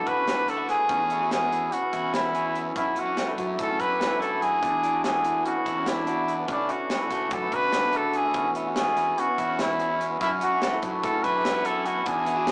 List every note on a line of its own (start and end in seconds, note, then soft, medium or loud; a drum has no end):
0.00 0.68 A2 medium
0.00 0.66 D3 medium
0.00 0.86 A3 medium
0.00 0.57 B3 medium
0.00 1.10 C#4 medium
0.00 0.23 D4 medium
0.00 1.10 E4 medium
0.00 1.20 F#4 medium
0.06 0.85 D2 medium
0.06 0.26 F#4 medium
0.06 0.51 B4 medium
0.06 kick medium
0.06 closed hi-hat soft
0.17 0.33 C#4 medium
0.27 0.95 D4 medium
0.27 0.47 F#4 medium
0.27 snare medium
0.27 closed hi-hat medium
0.47 0.78 A3 medium
0.47 0.57 E4 medium
0.47 0.69 A4 medium
0.47 snare soft
0.47 closed hi-hat medium
0.57 1.82 B3 medium
0.57 0.89 F#4 soft
0.68 0.89 D3 medium
0.68 1.28 G#4 loud
0.68 snare soft
0.68 closed hi-hat medium
0.78 1.47 A3 medium
0.88 1.71 E2 medium
0.88 1.68 E2 loud
0.88 1.72 C#4 medium
0.88 kick medium
0.88 closed hi-hat medium
1.10 2.11 C#4 medium
1.10 1.51 E4 medium
1.10 closed hi-hat medium
1.20 2.96 F#4 medium
1.31 2.74 B3 medium
1.31 1.74 G#4 medium
1.31 snare medium
1.31 closed hi-hat medium
1.41 2.34 G#4 medium
1.52 2.78 E3 medium
1.52 2.14 E4 medium
1.52 closed hi-hat medium
1.72 2.54 E2 medium
1.72 2.03 C#4 medium
1.72 2.16 F#4 medium
1.72 closed hi-hat medium
1.82 2.66 B3 medium
1.93 2.72 E2 medium
1.93 3.78 E4 medium
1.93 kick medium
1.93 closed hi-hat medium
2.03 2.76 C#4 medium
2.13 2.34 C#4 medium
2.13 2.61 E4 medium
2.13 2.45 E4 medium
2.13 snare loud
2.13 closed hi-hat medium
2.35 2.74 C#4 medium
2.35 4.27 G#4 medium
2.35 closed hi-hat medium
2.45 3.28 E4 medium
2.55 2.75 E2 medium
2.55 closed hi-hat medium
2.66 4.30 B3 medium
2.75 4.40 F#2 medium
2.75 2.94 F#2 medium
2.75 3.14 C#4 medium
2.75 3.01 E4 medium
2.75 kick loud
2.75 closed hi-hat medium
2.95 3.06 B3 medium
2.95 3.38 F#4 medium
2.95 closed hi-hat medium
2.99 3.33 F#4 medium
3.06 3.98 C#4 soft
3.06 3.75 D4 medium
3.17 5.03 A3 medium
3.17 snare medium
3.17 closed hi-hat medium
3.28 3.58 E4 medium
3.36 3.57 F#2 medium
3.36 4.59 F#3 medium
3.36 4.93 F#4 medium
3.36 kick medium
3.36 closed hi-hat medium
3.57 3.77 A2 medium
3.57 4.59 C#3 medium
3.57 4.00 E4 medium
3.57 kick loud
3.57 closed hi-hat medium
3.62 3.82 A4 medium
3.69 3.96 C#4 medium
3.79 4.58 F#2 medium
3.79 4.19 E4 medium
3.79 4.21 B4 loud
3.79 kick medium
3.79 closed hi-hat soft
3.90 4.62 D4 medium
3.99 4.59 C#4 medium
3.99 4.83 E4 medium
3.99 snare loud
3.99 closed hi-hat medium
4.20 4.51 A3 medium
4.20 5.64 E4 medium
4.20 4.44 A4 medium
4.20 closed hi-hat medium
4.31 5.55 B3 medium
4.41 4.60 F#2 medium
4.41 5.04 G#4 loud
4.41 closed hi-hat medium
4.51 5.21 A3 medium
4.62 6.25 E2 medium
4.62 5.42 E2 medium
4.62 5.51 D4 medium
4.62 kick medium
4.62 closed hi-hat medium
4.83 5.84 D4 medium
4.83 5.24 E4 medium
4.83 closed hi-hat medium
4.93 6.07 F#4 medium
5.04 6.46 A3 medium
5.04 5.43 G#4 medium
5.04 snare medium
5.04 closed hi-hat medium
5.15 8.00 G#4 medium
5.24 6.46 E3 medium
5.24 6.16 E4 medium
5.24 closed hi-hat medium
5.44 6.46 B2 medium
5.44 5.76 C#4 medium
5.44 5.90 F#4 medium
5.44 closed hi-hat medium
5.56 6.38 B3 medium
5.65 6.45 E2 medium
5.65 6.49 E4 medium
5.65 kick medium
5.65 closed hi-hat medium
5.77 5.93 C#4 medium
5.85 6.05 D4 medium
5.85 6.54 D4 medium
5.85 6.34 E4 medium
5.85 snare loud
5.85 closed hi-hat medium
6.06 6.46 D4 medium
6.06 6.69 F#4 medium
6.06 closed hi-hat medium
6.17 7.00 E4 medium
6.28 closed hi-hat medium
6.38 7.42 B3 medium
6.47 6.67 D2 medium
6.47 8.14 D3 medium
6.47 6.85 C#4 medium
6.47 kick loud
6.47 closed hi-hat medium
6.51 6.73 D4 medium
6.69 6.90 C#4 medium
6.69 7.10 F#4 medium
6.69 7.35 F#4 medium
6.69 closed hi-hat medium
6.79 7.31 D4 medium
6.90 8.56 C#4 medium
6.90 snare loud
6.90 closed hi-hat medium
7.01 8.56 E4 medium
7.10 7.29 D2 medium
7.10 8.32 A3 medium
7.10 8.66 F#4 medium
7.10 kick medium
7.10 snare soft
7.10 closed hi-hat medium
7.31 7.50 F#2 medium
7.31 7.72 A2 medium
7.31 7.69 D4 medium
7.31 7.56 A4 medium
7.31 kick loud
7.31 closed hi-hat medium
7.42 8.04 B3 medium
7.52 8.31 D2 medium
7.52 8.33 F#4 medium
7.52 7.98 B4 medium
7.52 kick medium
7.52 closed hi-hat medium
7.63 7.79 C#4 medium
7.72 7.93 B2 medium
7.72 8.41 D4 medium
7.72 snare loud
7.72 closed hi-hat medium
7.93 8.14 C#3 medium
7.93 8.24 A3 medium
7.93 closed hi-hat medium
7.97 8.18 A4 medium
8.04 9.27 B3 medium
8.13 8.35 D3 medium
8.13 8.50 G#4 medium
8.13 closed hi-hat medium
8.25 8.93 A3 medium
8.34 9.16 E2 medium
8.34 9.13 E2 medium
8.34 9.17 C#4 medium
8.34 kick loud
8.34 closed hi-hat medium
8.55 9.59 C#4 medium
8.55 8.96 E4 medium
8.55 closed hi-hat medium
8.67 10.42 F#4 medium
8.76 10.19 B3 medium
8.76 9.21 G#4 medium
8.76 snare loud
8.76 closed hi-hat medium
8.87 9.79 G#4 medium
8.96 10.23 E3 medium
8.96 9.58 E4 medium
8.96 snare soft
8.96 closed hi-hat medium
9.18 9.99 E2 medium
9.18 9.48 C#4 medium
9.18 9.63 F#4 medium
9.18 closed hi-hat medium
9.28 10.10 B3 medium
9.38 10.17 E2 loud
9.38 11.24 E4 medium
9.38 kick medium
9.38 closed hi-hat medium
9.48 10.21 C#4 medium
9.59 9.80 C#4 medium
9.59 9.89 E4 medium
9.59 10.07 E4 medium
9.59 snare loud
9.59 closed hi-hat medium
9.79 10.19 C#4 medium
9.79 12.52 G#4 medium
9.79 closed hi-hat medium
9.89 10.72 E4 medium
10.00 10.19 E2 medium
10.00 closed hi-hat medium
10.10 11.65 B3 medium
10.20 11.83 F#2 medium
10.20 10.40 F#2 loud
10.20 10.59 C#4 loud
10.20 10.31 E4 medium
10.20 kick loud
10.20 closed hi-hat medium
10.41 10.51 B3 medium
10.41 10.83 F#4 medium
10.41 10.81 F#4 medium
10.41 closed hi-hat medium
10.51 11.44 C#4 soft
10.51 11.20 D4 medium
10.62 12.05 A3 medium
10.62 snare loud
10.62 closed hi-hat medium
10.73 11.04 E4 medium
10.82 11.01 F#2 medium
10.82 12.04 F#3 medium
10.82 12.36 F#4 medium
10.82 kick medium
10.82 closed hi-hat medium
11.03 11.22 A2 loud
11.03 12.04 C#3 medium
11.03 11.44 E4 medium
11.03 11.25 A4 medium
11.03 kick loud
11.03 closed hi-hat medium
11.14 11.41 C#4 medium
11.23 12.02 F#2 medium
11.23 11.64 E4 medium
11.23 11.67 B4 loud
11.23 kick medium
11.23 closed hi-hat medium
11.35 11.82 D4 medium
11.44 11.54 B3 medium
11.44 12.27 E4 medium
11.44 snare loud
11.44 closed hi-hat medium
11.54 12.06 C#4 soft
11.65 11.95 B3 medium
11.65 12.52 E4 medium
11.65 11.88 A4 medium
11.65 closed hi-hat medium
11.76 12.12 C#4 medium
11.84 12.03 F#2 medium
11.84 12.07 F#4 medium
11.84 closed hi-hat medium
11.96 12.52 B3 medium
12.05 12.52 E2 medium
12.05 12.52 E2 loud
12.05 12.52 D4 medium
12.05 12.52 G#4 medium
12.05 kick medium
12.05 closed hi-hat medium
12.26 12.36 B3 medium
12.26 12.52 E4 medium
12.26 closed hi-hat medium
12.36 12.52 D4 soft
12.36 12.52 F#4 medium
12.46 12.52 G#3 medium
12.46 snare loud
12.46 closed hi-hat medium